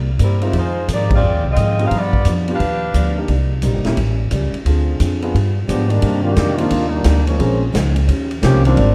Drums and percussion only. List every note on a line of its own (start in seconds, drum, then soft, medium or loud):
0.19 kick soft
0.19 hi-hat pedal medium
0.19 ride medium
0.42 ride soft
0.53 kick soft
0.53 ride medium
0.88 kick soft
0.88 hi-hat pedal medium
0.88 ride medium
1.11 kick medium
1.11 ride medium
1.56 kick soft
1.56 hi-hat pedal soft
1.56 ride medium
1.79 ride soft
1.91 kick soft
1.91 ride medium
2.13 kick soft
2.25 kick soft
2.25 hi-hat pedal medium
2.25 ride medium
2.48 ride soft
2.60 kick soft
2.60 ride medium
2.94 kick soft
2.94 hi-hat pedal medium
2.94 ride medium
3.28 kick soft
3.28 ride soft
3.62 kick soft
3.62 hi-hat pedal medium
3.62 ride medium
3.85 snare soft
3.85 ride soft
3.97 kick soft
3.97 ride medium
4.31 kick soft
4.31 hi-hat pedal medium
4.31 ride medium
4.54 ride soft
4.66 kick soft
4.66 ride medium
5.00 kick soft
5.00 hi-hat pedal medium
5.00 ride medium
5.22 ride soft
5.35 kick soft
5.35 ride medium
5.69 kick soft
5.69 hi-hat pedal medium
5.69 ride medium
5.90 ride soft
6.02 kick soft
6.02 ride medium
6.36 kick soft
6.36 snare medium
6.36 hi-hat pedal medium
6.36 ride medium
6.58 ride medium
6.70 kick soft
6.70 ride medium
7.04 kick soft
7.04 snare medium
7.04 hi-hat pedal medium
7.04 ride medium
7.27 ride soft
7.40 kick soft
7.40 ride medium
7.74 kick soft
7.74 snare medium
7.74 hi-hat pedal medium
7.74 ride medium
7.96 ride soft
8.09 kick soft
8.09 ride medium
8.31 ride soft
8.43 kick soft
8.43 snare medium
8.43 hi-hat pedal medium
8.43 ride medium
8.65 ride medium
8.77 kick soft
8.77 ride medium